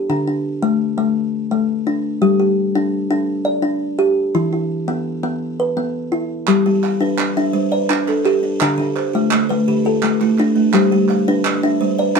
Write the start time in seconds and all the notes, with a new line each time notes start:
0.10 D3 D4
0.28 D4
0.62 A3
0.98 A3
1.51 A3
1.87 D4
2.22 G3 G4
2.40 G4
2.75 D4
3.11 D4
3.45 D5
3.62 D4
3.99 G4
4.35 E3 E4
4.53 E4
4.88 B3
5.23 B3
5.60 B4
5.77 B3
6.12 E4
6.47 G3 G4, clap
6.66 G3 G4
6.83 F5, clap
7.01 D4 B4
7.18 D4, clap
7.37 D4 E5
7.53 G3 C5
7.72 B4 D5
7.90 D4, clap
8.08 D4 A4, clap
8.25 G4, clap
8.43 D4
8.61 D3 D4 F5, clap
8.78 D3 D4
8.96 C5, clap
9.13 A3 F4
9.31 A3, clap
9.49 A3 B4
9.68 D3 G4
9.85 F4 A4
10.03 A3, clap
10.21 A3 E4, clap
10.38 D4, clap
10.56 A3
10.74 G3 G4 C5, clap
10.92 G3 G4
11.09 F5, clap
11.28 D4 B4
11.45 D4, clap
11.63 D4 E5
11.81 G3 C5
11.98 B4 D5
12.16 D4, clap